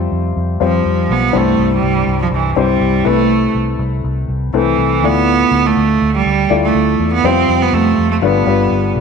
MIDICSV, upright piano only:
0, 0, Header, 1, 2, 480
1, 0, Start_track
1, 0, Key_signature, 0, "major"
1, 0, Tempo, 491521
1, 1311, Time_signature, 4, 2, 24, 8
1, 8794, End_track
2, 0, Start_track
2, 0, Title_t, "Upright piano"
2, 0, Program_c, 0, 0
2, 0, Control_c, 0, 64, 127
2, 0, Note_on_c, 0, 48, 51
2, 0, Note_on_c, 0, 55, 65
2, 0, Note_on_c, 0, 60, 59
2, 0, Note_on_c, 0, 65, 60
2, 0, Note_on_c, 0, 72, 74
2, 587, Note_off_c, 0, 55, 0
2, 587, Note_on_c, 0, 55, 60
2, 590, Note_off_c, 0, 60, 0
2, 590, Note_off_c, 0, 72, 0
2, 590, Note_on_c, 0, 60, 55
2, 590, Note_on_c, 0, 72, 62
2, 593, Note_off_c, 0, 65, 0
2, 593, Note_on_c, 0, 65, 57
2, 1108, Note_off_c, 0, 55, 0
2, 1110, Note_off_c, 0, 60, 0
2, 1110, Note_off_c, 0, 72, 0
2, 1111, Note_off_c, 0, 65, 0
2, 1296, Note_on_c, 0, 43, 56
2, 1297, Note_on_c, 0, 64, 59
2, 1298, Note_on_c, 0, 55, 64
2, 1300, Note_on_c, 0, 60, 56
2, 1300, Note_on_c, 0, 72, 69
2, 1323, Control_c, 0, 64, 0
2, 1330, Note_off_c, 0, 48, 0
2, 1493, Control_c, 0, 64, 127
2, 1984, Note_off_c, 0, 43, 0
2, 1996, Note_off_c, 0, 64, 0
2, 1997, Note_off_c, 0, 55, 0
2, 1998, Note_off_c, 0, 60, 0
2, 1998, Note_off_c, 0, 72, 0
2, 2503, Note_on_c, 0, 55, 63
2, 2504, Note_on_c, 0, 64, 62
2, 2504, Note_on_c, 0, 72, 71
2, 2506, Note_on_c, 0, 60, 58
2, 2957, Note_off_c, 0, 60, 0
2, 2958, Note_off_c, 0, 64, 0
2, 2970, Note_on_c, 0, 48, 45
2, 2972, Note_on_c, 0, 60, 53
2, 2972, Note_on_c, 0, 64, 53
2, 2973, Note_on_c, 0, 57, 59
2, 2975, Note_on_c, 0, 71, 67
2, 2987, Note_off_c, 0, 55, 0
2, 2987, Note_off_c, 0, 72, 0
2, 3001, Control_c, 0, 64, 0
2, 3194, Control_c, 0, 64, 127
2, 3661, Note_off_c, 0, 48, 0
2, 3749, Note_off_c, 0, 60, 0
2, 3749, Note_off_c, 0, 64, 0
2, 3750, Note_off_c, 0, 57, 0
2, 3750, Note_off_c, 0, 71, 0
2, 4427, Note_on_c, 0, 64, 55
2, 4431, Note_on_c, 0, 60, 64
2, 4433, Note_on_c, 0, 57, 70
2, 4433, Note_on_c, 0, 71, 65
2, 4900, Note_off_c, 0, 57, 0
2, 4902, Note_off_c, 0, 64, 0
2, 4911, Note_off_c, 0, 60, 0
2, 4911, Note_off_c, 0, 71, 0
2, 4914, Note_on_c, 0, 57, 58
2, 4916, Note_on_c, 0, 64, 58
2, 4917, Note_on_c, 0, 45, 44
2, 4919, Note_on_c, 0, 65, 50
2, 4922, Control_c, 0, 64, 0
2, 4922, Note_on_c, 0, 74, 60
2, 5110, Control_c, 0, 64, 127
2, 5594, Note_off_c, 0, 45, 0
2, 5680, Note_off_c, 0, 57, 0
2, 5681, Note_off_c, 0, 64, 0
2, 5682, Note_off_c, 0, 65, 0
2, 5684, Note_off_c, 0, 74, 0
2, 6346, Note_on_c, 0, 57, 68
2, 6347, Note_on_c, 0, 65, 57
2, 6350, Note_on_c, 0, 74, 80
2, 6352, Note_on_c, 0, 64, 62
2, 6867, Note_off_c, 0, 57, 0
2, 6868, Note_off_c, 0, 65, 0
2, 6870, Note_off_c, 0, 74, 0
2, 6871, Note_off_c, 0, 64, 0
2, 7074, Note_on_c, 0, 60, 62
2, 7075, Note_on_c, 0, 55, 64
2, 7077, Note_on_c, 0, 72, 75
2, 7080, Note_on_c, 0, 65, 63
2, 7082, Note_on_c, 0, 48, 57
2, 7083, Control_c, 0, 64, 0
2, 7282, Control_c, 0, 64, 127
2, 7757, Note_off_c, 0, 48, 0
2, 7764, Note_off_c, 0, 60, 0
2, 7765, Note_off_c, 0, 55, 0
2, 7766, Note_off_c, 0, 72, 0
2, 7768, Note_off_c, 0, 65, 0
2, 8025, Note_on_c, 0, 65, 63
2, 8027, Note_on_c, 0, 55, 61
2, 8027, Note_on_c, 0, 62, 57
2, 8028, Note_on_c, 0, 50, 54
2, 8030, Note_on_c, 0, 43, 50
2, 8030, Note_on_c, 0, 71, 78
2, 8042, Control_c, 0, 64, 0
2, 8220, Note_off_c, 0, 55, 0
2, 8220, Note_off_c, 0, 65, 0
2, 8221, Note_off_c, 0, 62, 0
2, 8222, Note_off_c, 0, 71, 0
2, 8225, Control_c, 0, 64, 127
2, 8265, Note_on_c, 0, 55, 66
2, 8267, Note_on_c, 0, 65, 53
2, 8270, Note_on_c, 0, 71, 69
2, 8271, Note_on_c, 0, 62, 61
2, 8710, Note_off_c, 0, 50, 0
2, 8711, Note_off_c, 0, 43, 0
2, 8787, Note_off_c, 0, 55, 0
2, 8788, Note_off_c, 0, 65, 0
2, 8789, Note_off_c, 0, 71, 0
2, 8790, Note_off_c, 0, 62, 0
2, 8794, End_track
0, 0, End_of_file